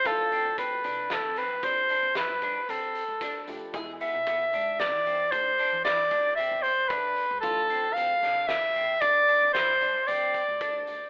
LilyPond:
<<
  \new Staff \with { instrumentName = "Soprano saxophone" } { \time 7/4 \key d \dorian \tempo 4 = 114 a'4 b'4 a'8 b'8 c''4 b'4 a'4. r8 | r8 e''4. d''4 c''4 d''4 e''8 c''8 b'4 | a'4 f''4 e''4 d''4 c''4 d''4. r8 | }
  \new Staff \with { instrumentName = "Clean electric guitar" } { \time 7/4 \key d \dorian f'8 c'8 c'8 d'4 c'8 d'8 d'8 e'8 d'8 c'4 d'4 | gis'8 b8 b8 d'4 c'8 d'8 d'8 e'8 d'8 c'4 d'4 | f'8 c'8 c'8 d'4 c'8 d'8 d'8 e'8 d'8 c'4 d'4 | }
  \new Staff \with { instrumentName = "Grand piano" } { \time 7/4 \key d \dorian <f a d' e'>1.~ <f a d' e'>8 <f a d' g'>8 | <e gis e'>1.~ <e gis e'>4 | <e f a d'>1.~ <e f a d'>4 | }
  \new Staff \with { instrumentName = "Upright bass" } { \clef bass \time 7/4 \key d \dorian d,8. d,8. c,8. f,8. f,8. f,8 g,8 r16 d8 r16 d,8. d,16 r16 | e,8 r16 b,,8. gis,8. e8. d,8 r16 e8. d,8 r16 e,8. d8 r16 gis,16 | d,8. d,8. c,8. f,8. f,8. f,8 g,8 r16 d8 r16 d,8. d,16 r16 | }
  \new DrumStaff \with { instrumentName = "Drums" } \drummode { \time 7/4 <hh bd>8 hh8 <hh bd>8 hh8 <hh sn>8 <hh sn>8 <hh bd>8 hh8 <hh sn>8 <hh bd>8 hh8 hh8 <hh bd sn>8 hh8 | <hh bd>8 hh8 <hh bd>8 hh8 <hh sn>8 hh8 <hh bd>8 hh8 <hh sn>8 <hh bd>8 hh8 hh8 <hh bd>8 hh8 | <hh bd>8 hh8 hh8 <hh sn>8 <hh sn>8 hh8 <hh bd>8 hh8 <hh sn>8 hh8 hh8 <hh bd>8 <hh bd>8 hh8 | }
>>